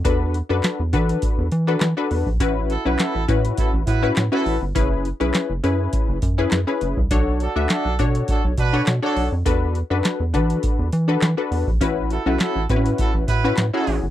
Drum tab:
HH |x-x-x-xxx-x-x-o-|x-x-x-xxx-x-x-o-|x-xxx-x-x-x-x-x-|x-x-x-xxx-x-x-o-|
CP |----x-------x---|----x-------x---|----x-------x---|----x-------x---|
SD |----o-------o---|----o-------o---|----o-------o---|----o-------o---|
BD |o-----o-o------o|o-----o-o-o-----|o-------o-o----o|o-----o-o-o-----|

HH |x-x-x-xxx-x-x-o-|x-x-x-xxx-x-x-o-|
CP |----x-------x---|----x-------x---|
SD |----o-------o---|----o-------o---|
BD |o-----o-o------o|o-----o-o-o-----|